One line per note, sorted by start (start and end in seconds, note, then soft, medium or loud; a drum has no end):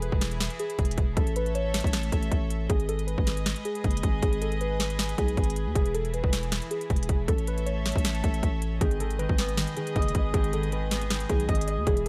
0.00 0.10 E1 loud
0.00 1.15 E3 medium
0.00 1.15 E4 medium
0.00 1.15 G#4 medium
0.00 1.13 B4 medium
0.00 0.56 B4 medium
0.00 closed hi-hat medium
0.12 0.49 E1 loud
0.12 kick medium
0.21 snare loud
0.21 closed hi-hat medium
0.31 closed hi-hat medium
0.40 snare loud
0.40 closed hi-hat medium
0.50 closed hi-hat medium
0.59 1.13 G#4 medium
0.59 closed hi-hat medium
0.70 closed hi-hat medium
0.79 0.97 E1 loud
0.79 kick loud
0.79 closed hi-hat medium
0.85 closed hi-hat medium
0.91 closed hi-hat medium
0.98 1.16 E1 loud
0.98 kick loud
0.98 closed hi-hat medium
1.17 1.82 A1 loud
1.17 2.68 A3 medium
1.17 2.68 A4 medium
1.17 1.34 A4 loud
1.17 2.68 C#5 medium
1.17 2.68 E5 medium
1.17 kick loud
1.17 closed hi-hat medium
1.27 closed hi-hat soft
1.36 1.53 B4 medium
1.36 closed hi-hat medium
1.46 closed hi-hat soft
1.55 2.09 C#5 medium
1.55 closed hi-hat medium
1.74 snare loud
1.74 closed hi-hat medium
1.74 open hi-hat medium
1.80 2.11 A1 loud
1.80 kick medium
1.80 closed hi-hat medium
1.87 closed hi-hat medium
1.93 snare loud
1.93 closed hi-hat medium
2.03 closed hi-hat medium
2.12 2.31 A1 loud
2.12 2.66 A4 medium
2.12 kick medium
2.12 closed hi-hat medium
2.23 closed hi-hat medium
2.32 2.68 A1 loud
2.32 kick loud
2.32 closed hi-hat medium
2.50 closed hi-hat medium
2.70 3.16 G#1 loud
2.70 5.72 G#3 medium
2.70 7.24 G#4 medium
2.70 2.86 G#4 medium
2.70 7.24 B4 medium
2.70 5.72 D#5 medium
2.70 kick loud
2.70 closed hi-hat medium
2.80 closed hi-hat soft
2.89 3.05 A4 loud
2.89 closed hi-hat medium
2.99 closed hi-hat soft
3.07 3.61 B4 medium
3.07 closed hi-hat medium
3.18 3.55 G#1 loud
3.18 kick medium
3.27 snare medium
3.27 closed hi-hat medium
3.37 closed hi-hat medium
3.46 snare loud
3.46 closed hi-hat medium
3.56 closed hi-hat medium
3.65 4.19 G#4 medium
3.65 closed hi-hat medium
3.75 closed hi-hat medium
3.84 4.03 F#1 loud
3.84 kick loud
3.84 closed hi-hat medium
3.91 closed hi-hat medium
3.97 closed hi-hat medium
4.03 4.22 G#1 loud
4.03 kick medium
4.03 closed hi-hat medium
4.22 5.14 G#1 loud
4.22 4.39 G#4 loud
4.22 kick loud
4.22 closed hi-hat medium
4.33 closed hi-hat soft
4.42 4.58 A4 medium
4.42 closed hi-hat medium
4.52 closed hi-hat soft
4.61 5.15 B4 medium
4.61 closed hi-hat medium
4.80 snare medium
4.80 closed hi-hat medium
4.90 closed hi-hat medium
4.99 snare loud
4.99 closed hi-hat medium
5.09 closed hi-hat medium
5.18 5.36 B1 loud
5.18 5.72 G#4 medium
5.18 kick medium
5.18 closed hi-hat medium
5.28 closed hi-hat medium
5.37 5.68 G#1 loud
5.37 kick loud
5.37 closed hi-hat soft
5.44 closed hi-hat medium
5.50 closed hi-hat medium
5.56 closed hi-hat medium
5.66 5.75 D#2 loud
5.75 6.22 E1 loud
5.75 7.27 E3 medium
5.75 7.27 E4 medium
5.75 5.92 G#4 loud
5.75 kick loud
5.75 closed hi-hat medium
5.86 closed hi-hat soft
5.94 6.11 A4 medium
5.94 closed hi-hat medium
6.05 closed hi-hat medium
6.14 6.68 B4 medium
6.14 closed hi-hat medium
6.24 6.60 E1 loud
6.24 kick loud
6.33 snare loud
6.33 closed hi-hat medium
6.43 closed hi-hat medium
6.52 snare loud
6.52 closed hi-hat medium
6.62 closed hi-hat medium
6.71 7.25 G#4 medium
6.71 closed hi-hat medium
6.81 closed hi-hat medium
6.90 7.08 E1 loud
6.90 kick loud
6.90 closed hi-hat soft
6.96 closed hi-hat medium
7.03 closed hi-hat medium
7.09 7.27 E1 loud
7.09 kick loud
7.09 closed hi-hat medium
7.28 7.93 A1 loud
7.28 8.80 A3 medium
7.28 8.80 A4 medium
7.28 7.45 A4 loud
7.28 8.80 C#5 medium
7.28 8.80 E5 medium
7.28 kick loud
7.28 closed hi-hat medium
7.38 closed hi-hat soft
7.47 7.64 B4 loud
7.47 closed hi-hat medium
7.58 closed hi-hat soft
7.66 8.20 C#5 medium
7.66 closed hi-hat medium
7.86 snare medium
7.86 closed hi-hat medium
7.86 open hi-hat medium
7.92 8.23 A1 loud
7.92 kick loud
7.92 closed hi-hat medium
7.98 closed hi-hat medium
8.05 snare loud
8.05 closed hi-hat medium
8.15 closed hi-hat medium
8.24 8.42 A1 loud
8.24 8.78 A4 medium
8.24 kick medium
8.24 closed hi-hat medium
8.34 closed hi-hat medium
8.43 8.80 A1 loud
8.43 kick medium
8.43 closed hi-hat medium
8.62 closed hi-hat medium
8.81 9.27 G#1 loud
8.81 8.99 D#3 medium
8.81 11.84 G#3 medium
8.81 12.09 G#4 medium
8.81 8.98 G#4 medium
8.81 11.84 B4 medium
8.81 11.84 D#5 medium
8.81 kick loud
8.81 closed hi-hat medium
8.91 closed hi-hat soft
9.00 9.18 D#3 medium
9.00 9.17 A4 loud
9.00 closed hi-hat medium
9.10 closed hi-hat soft
9.19 9.56 D#3 loud
9.19 9.73 B4 medium
9.19 closed hi-hat medium
9.29 9.66 G#1 loud
9.29 kick loud
9.38 10.91 B3 medium
9.38 snare medium
9.38 closed hi-hat medium
9.49 closed hi-hat medium
9.57 9.76 D#3 medium
9.57 snare loud
9.57 closed hi-hat medium
9.67 closed hi-hat medium
9.77 10.33 D#3 medium
9.77 10.31 G#4 medium
9.77 closed hi-hat medium
9.87 closed hi-hat medium
9.96 10.14 F#1 loud
9.96 10.15 D#5 loud
9.96 kick medium
9.96 closed hi-hat soft
10.02 closed hi-hat medium
10.08 closed hi-hat medium
10.15 10.33 G#1 loud
10.15 11.48 D#5 medium
10.15 kick medium
10.15 closed hi-hat medium
10.34 11.26 G#1 loud
10.34 10.52 D#3 medium
10.34 10.50 G#4 loud
10.34 kick loud
10.34 closed hi-hat medium
10.44 closed hi-hat soft
10.53 10.70 D#3 medium
10.53 10.70 A4 medium
10.53 closed hi-hat medium
10.63 closed hi-hat soft
10.72 11.10 D#3 medium
10.72 11.26 B4 medium
10.72 closed hi-hat medium
10.91 12.09 B3 medium
10.91 snare loud
10.91 closed hi-hat medium
11.01 closed hi-hat medium
11.10 11.29 D#3 medium
11.10 snare loud
11.10 closed hi-hat medium
11.20 closed hi-hat medium
11.29 11.48 B1 loud
11.29 11.92 D#3 medium
11.29 11.84 G#4 medium
11.29 kick medium
11.29 closed hi-hat medium
11.40 closed hi-hat medium
11.48 11.79 G#1 loud
11.48 11.67 D#5 loud
11.48 kick medium
11.48 closed hi-hat medium
11.55 closed hi-hat medium
11.61 closed hi-hat medium
11.68 11.92 D#5 medium
11.68 closed hi-hat medium
11.78 11.86 D#2 loud
11.86 12.09 E1 loud
11.86 12.05 E3 loud
11.86 12.09 E3 medium
11.86 12.09 E4 medium
11.86 12.04 G#4 loud
11.86 12.09 B4 medium
11.86 kick loud
11.86 closed hi-hat medium
11.97 closed hi-hat soft